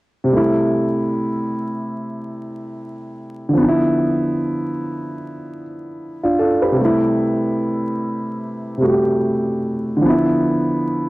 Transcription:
0.24 C3
0.28 G3
0.33 A3 E4
3.49 D3
3.53 F3
3.57 B3
3.62 D#4
3.68 E4
6.24 D4 F4
6.39 F4 A4
6.62 G4 B4
6.72 C3
6.76 G3
6.81 A3
6.85 E4
8.77 C3 G3
8.82 A3 F#4
8.91 G4
9.97 D3
10.01 F3
10.06 B3 E4

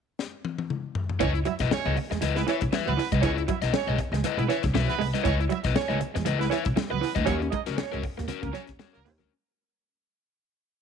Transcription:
0.19 snare
0.45 high tom
0.58 high tom
0.70 mid tom
0.95 floor tom
1.09 floor tom
1.20 C#2 E3 C#4 E4 B4 C#5 D#5, kick, closed hi-hat, muted conga
1.34 muted overdriven electric guitar stroke, closed hi-hat
1.45 F#3 E4 E5, muted overdriven electric guitar stroke, closed hi-hat, muted conga
1.59 B1 E4 B4 D#5, muted clean electric guitar stroke, kick, snare, closed hi-hat
1.71 C#4 C#5, muted overdriven electric guitar stroke, snare, high conga
1.85 C#2 G#3 E4 B4 D#5, closed hi-hat
1.96 muted clean electric guitar stroke, muted overdriven electric guitar stroke, open hi-hat, low conga
2.10 E2 G#3, muted overdriven electric guitar stroke, snare, closed hi-hat
2.21 C#2 E4 B4 D#5, muted clean electric guitar stroke, closed hi-hat, muted conga
2.35 G#3 B3 B4, muted overdriven electric guitar stroke, snare, closed hi-hat
2.47 E3 C#4 E4 B4 C#5 E5, snare, closed hi-hat, muted conga
2.61 B1, muted overdriven electric guitar stroke, kick, closed hi-hat
2.72 E4 B4 E5, muted clean electric guitar stroke, muted upright bass stroke, snare, high conga
2.86 C#2 F#3 B3 B4, closed hi-hat
2.97 E3, muted overdriven electric guitar stroke, snare, open hi-hat
3.12 C2 E4 B4 D#5, kick, closed hi-hat, high conga
3.21 C#2 E3 C#4 E4 B4 C#5 D#5, kick, closed hi-hat, muted conga
3.38 muted overdriven electric guitar stroke, closed hi-hat
3.48 F#3 E4 E5, muted overdriven electric guitar stroke, kick, closed hi-hat, muted conga
3.62 B1 E4 B4 D#5, muted clean electric guitar stroke, snare, closed hi-hat
3.73 C#4 C#5, muted overdriven electric guitar stroke, snare, high conga
3.87 B1 G#3 E4 B4 D#5, closed hi-hat
3.98 muted clean electric guitar stroke, muted overdriven electric guitar stroke, kick, closed hi-hat
4.12 C#2 G#3, muted overdriven electric guitar stroke, snare, closed hi-hat
4.24 E4 B4 D#5, muted clean electric guitar stroke, closed hi-hat, muted conga, low conga
4.37 B1 G#3 B3 B4, muted overdriven electric guitar stroke, closed hi-hat
4.48 E3 C#4 E4 B4 C#5 E5, snare, closed hi-hat, muted conga
4.63 C#2, muted overdriven electric guitar stroke, kick, snare, closed hi-hat
4.74 B1 E4 B4 E5, snare, high conga
4.88 B3 B4, snare, closed hi-hat
4.99 C2 G#3, muted overdriven electric guitar stroke, open hi-hat
5.14 E4 B4 D#5, snare, closed hi-hat, high conga
5.23 C#2 E3 C#4 E4 B4 C#5 D#5, kick, closed hi-hat, muted conga
5.40 muted overdriven electric guitar stroke, closed hi-hat
5.49 F#3 E4 E5, muted overdriven electric guitar stroke, closed hi-hat, muted conga
5.63 B1 E4 B4 D#5, muted clean electric guitar stroke, kick, snare, closed hi-hat
5.75 C#4 C#5, muted overdriven electric guitar stroke, snare, high conga
5.89 C#2 G#3 E4 B4 D#5, closed hi-hat
6.00 muted overdriven electric guitar stroke, muted clean electric guitar stroke, closed hi-hat, low conga
6.14 E2 G#3, muted overdriven electric guitar stroke, snare, closed hi-hat
6.25 C#2 E4 B4 D#5, muted clean electric guitar stroke, closed hi-hat, muted conga
6.39 G#3 B3 B4, muted overdriven electric guitar stroke, snare, closed hi-hat
6.49 E3 C#4 E4 B4 C#5 E5, snare, closed hi-hat, muted conga
6.65 B1, muted overdriven electric guitar stroke, kick, closed hi-hat
6.76 muted overdriven electric guitar stroke, muted clean electric guitar stroke, muted upright bass stroke, snare, high conga
6.88 C#2 F#3 B3 B4, muted overdriven electric guitar stroke
7.01 E3, snare, open hi-hat
7.15 D2 E4 B4 D#5, kick, closed hi-hat, high conga
7.25 D#2 F#3 C#4 F#4 A#4 C#5, kick, closed hi-hat, muted conga
7.42 muted overdriven electric guitar stroke, closed hi-hat
7.50 G#3 D#4 D#5, muted overdriven electric guitar stroke, kick, closed hi-hat, muted conga
7.66 C#2 C#4 F#4 A#4, muted clean electric guitar stroke, snare, closed hi-hat
7.76 C#4 C#5, muted overdriven electric guitar stroke, snare, high conga
7.92 C#2 G#3 C#4 F#4 A#4, closed hi-hat
8.03 muted clean electric guitar stroke, muted overdriven electric guitar stroke, kick, open hi-hat
8.18 D#2 A#3, muted overdriven electric guitar stroke, snare, closed hi-hat
8.28 C#4 F#4 A#4, muted clean electric guitar stroke, closed hi-hat, muted conga, low conga
8.41 C#2 A#3 A#4, muted overdriven electric guitar stroke, kick, closed hi-hat
8.52 F#3 C#4 F#4 C#5, snare, closed hi-hat, muted conga
8.67 D#2, muted overdriven electric guitar stroke, kick, snare, closed hi-hat
8.79 C#4 F#4 C#5, snare, high conga
8.92 C#2 A#3 A#4, snare, closed hi-hat
9.05 D#2 A#3, muted overdriven electric guitar stroke, open hi-hat
9.18 D2 C#4 F#4 A#4, snare, high conga

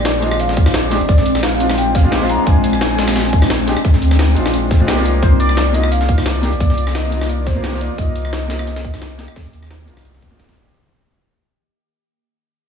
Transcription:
Already playing: A#1 G#3 C4 D4 G4 D5
0.05 snare, closed hi-hat
0.20 G#3 C4 D4 D#5, closed hi-hat, cabasa
0.25 F4
0.32 cross-stick
0.40 F5, closed hi-hat
0.49 snare
0.57 kick, closed hi-hat, cabasa
0.66 cross-stick, snare
0.74 D5, snare, closed hi-hat
0.84 closed hi-hat
0.90 G#3 C4 D4 G4, snare, closed hi-hat, cabasa
1.01 G#1, closed hi-hat
1.09 A#1 D5, kick, closed hi-hat
1.18 snare
1.26 closed hi-hat, cabasa
1.35 cross-stick, snare, cabasa
1.43 F5, snare, closed hi-hat
1.58 G#3 C4 D4, closed hi-hat, cabasa
1.63 F4
1.70 cross-stick, snare
1.78 G5, closed hi-hat
1.95 F5, kick, snare, closed hi-hat, cabasa
2.03 G#3 C4 D4 F4
2.11 G#3 C4 D4 G4, snare, closed hi-hat
2.19 G#3 C4 D4, snare
2.24 F4
2.29 A#5, closed hi-hat, cabasa
2.39 cabasa
2.47 A#1 G#5, kick, closed hi-hat
2.64 closed hi-hat, cabasa
2.73 cross-stick, cabasa
2.81 snare, closed hi-hat
2.96 G#3 C4 D4, snare, closed hi-hat, cabasa
3.01 F4
3.08 cross-stick, snare, closed hi-hat
3.16 snare, closed hi-hat
3.25 snare
3.33 kick, closed hi-hat, cabasa
3.42 cross-stick, snare
3.50 snare, closed hi-hat
3.59 closed hi-hat
3.66 G#3 C4 D4 G4, snare, closed hi-hat, cabasa
3.77 cross-stick, closed hi-hat
3.85 kick, closed hi-hat
3.94 snare
4.02 D2, closed hi-hat, cabasa
4.11 cross-stick, snare, cabasa
4.19 snare, closed hi-hat
4.34 A#1 G#3 C4 D4, closed hi-hat, cabasa
4.39 F4
4.46 cross-stick, snare
4.54 closed hi-hat
4.71 G#1, kick, snare, closed hi-hat, cabasa
4.79 G#3 C4 D4 F4
4.87 C2 G#3 C4 D4 G4, snare, closed hi-hat
4.95 A#3 D4 D#4, snare
5.00 F4
5.05 D#3 A#3 F4 D6, closed hi-hat, cabasa
5.15 cabasa
5.22 C2 C5, kick, closed hi-hat
5.40 D5, closed hi-hat, cabasa
5.49 cross-stick, cabasa
5.57 snare, closed hi-hat
5.72 A#3 D4 D#4 D#5, closed hi-hat, cabasa
5.77 F4
5.84 cross-stick
5.92 F5, closed hi-hat
6.01 snare
6.09 kick, closed hi-hat, cabasa
6.18 cross-stick, snare
6.26 D5, snare, closed hi-hat
6.36 closed hi-hat
6.42 A#3 D4 D#4 G4, snare, closed hi-hat, cabasa
6.52 A#1, closed hi-hat
6.60 C2 D5, kick, closed hi-hat
6.70 snare
6.78 closed hi-hat, cabasa
6.87 cross-stick, snare, cabasa
6.95 D#5, snare, closed hi-hat
7.10 A#3 D4 D#4, closed hi-hat, cabasa
7.15 F4
7.21 cross-stick, snare
7.29 D5, closed hi-hat
7.47 C5, kick, snare, closed hi-hat, cabasa
7.54 A#3 D4 D#4 F4
7.63 A#3 D4 D#4 G4, snare, closed hi-hat
7.71 A#3 C4 D#4, snare
7.76 F4
7.81 G4 D5, closed hi-hat, cabasa
7.90 cabasa
7.98 C2 D#5, kick, closed hi-hat
8.16 closed hi-hat, cabasa
8.25 cross-stick, cabasa
8.33 snare, closed hi-hat
8.48 A#3 C4 D#4, snare, closed hi-hat, cabasa
8.53 F4
8.59 cross-stick, closed hi-hat
8.67 snare, closed hi-hat
8.76 snare, closed hi-hat
8.85 kick, closed hi-hat, cabasa
8.94 cross-stick, snare, closed hi-hat
9.02 snare, closed hi-hat
9.11 closed hi-hat
9.18 A#3 D4 D#4 G4, snare, closed hi-hat, cabasa
9.28 cross-stick, closed hi-hat
9.36 kick, snare, closed hi-hat
9.45 snare
9.53 D#2, closed hi-hat, cabasa
9.63 cross-stick, snare, cabasa
9.71 snare, closed hi-hat
9.85 C2 A#3 D4 D#4, closed hi-hat, cabasa
9.90 F4
9.97 cross-stick, snare
10.05 closed hi-hat
10.14 snare
10.22 kick, closed hi-hat, cabasa
10.30 A#3 D4 D#4 F4
10.40 snare, closed hi-hat
10.44 A#3, snare, closed hi-hat
10.48 D4 D#4 F4, kick, snare, closed hi-hat
10.53 A#3 D4, snare, closed hi-hat
10.57 G1 D#4 G4, closed hi-hat, cabasa
10.66 C2, cabasa

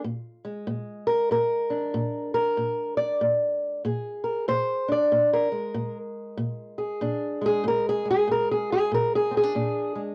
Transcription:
0.04 A#2
0.45 G#3
0.67 A#2
1.07 A#4
1.31 A#2 A#4
1.70 D4
1.94 A#2
2.34 A#4
2.57 A#2
2.97 D5
3.21 A#2
3.85 A#2 G#4
4.24 A#4
4.48 A#2 C5
4.88 D4 D5
5.12 A#2
5.33 A#4
5.52 G#3
5.74 A#2
6.37 A#2
6.78 G#4
7.01 A#2 D4
7.42 G#3
7.46 G#4
7.64 A#2
7.68 A#4
7.89 G#4
8.05 G#3
8.11 G#4
8.28 A#2 A#4
8.52 G#4
8.73 G#4
8.92 A#2 A#4
9.16 G#4
9.31 C4
9.37 G#4
9.44 D4
9.55 A#2 D4
9.96 G#3

